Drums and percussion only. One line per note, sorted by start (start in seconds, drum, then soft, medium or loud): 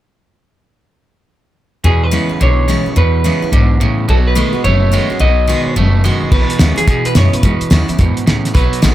6.32 kick loud
6.32 crash loud
6.50 closed hi-hat medium
6.59 snare loud
6.59 closed hi-hat medium
6.78 closed hi-hat medium
6.88 kick loud
6.88 closed hi-hat medium
7.05 closed hi-hat medium
7.15 snare loud
7.15 closed hi-hat medium
7.33 closed hi-hat medium
7.43 kick loud
7.43 closed hi-hat medium
7.61 closed hi-hat medium
7.71 snare loud
7.71 closed hi-hat medium
7.89 closed hi-hat medium
7.99 kick loud
7.99 closed hi-hat medium
8.17 closed hi-hat medium
8.28 snare loud
8.28 closed hi-hat medium
8.45 snare soft
8.45 closed hi-hat medium
8.55 kick loud
8.55 closed hi-hat medium
8.73 closed hi-hat medium
8.83 snare loud
8.83 closed hi-hat medium